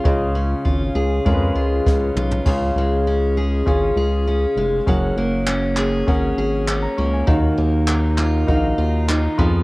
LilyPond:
<<
  \new Staff \with { instrumentName = "Grand piano" } { \time 4/4 \key des \mixolydian \tempo 4 = 100 << { r1 | r1 | r2. r16 bes''16 des'''16 aes''16~ | aes''16 r2. r8. | } \\ { <des' f' aes' ees''>4. r8 <des' f' aes' bes' ces''>4. r8 | <des' f' aes' f''>4. r8 <des' f' aes' f''>4. r8 | <des' aes' bes' ges''>4. r8 <des' aes' bes' ges''>4. r8 | <ees' ges' bes' f''>4. r8 <ees' ges' bes' f''>4. <ces' f' aes' f''>8 | } >> }
  \new Staff \with { instrumentName = "Steel-string acoustic guitar" } { \time 4/4 \key des \mixolydian <des aes des' f' aes'>8 des'8 f'8 aes'8 aes8 f'8 des'8 f'8 | des8 aes8 des'8 aes'8 des'8 aes'8 des'8 aes8 | ges8 bes8 des'8 aes'8 des'8 aes'8 des'8 bes8 | ees8 bes8 ees'8 f'8 ees'8 f'8 ees'8 f8 | }
  \new Staff \with { instrumentName = "Analog synth bass" } { \clef bass \time 4/4 \key des \mixolydian des,4 aes,,8 des,8 f,8 des,8 des,8 ces,8 | des,8 des,4. aes,,8 des,4 f,,8 | ges,,8 ges,,4. aes,,8 aes,,4 des,8 | ees,8 ees,4. bes,,8 ees,4 f,8 | }
  \new DrumStaff \with { instrumentName = "Drums" } \drummode { \time 4/4 bd4 bd4 bd4 <bd sn>8 toml16 tomfh16 | <cymc bd>4 r4 bd4 r4 | bd4 hc8 hc8 bd4 hc4 | bd4 hc8 hc8 bd4 hc8 bd8 | }
>>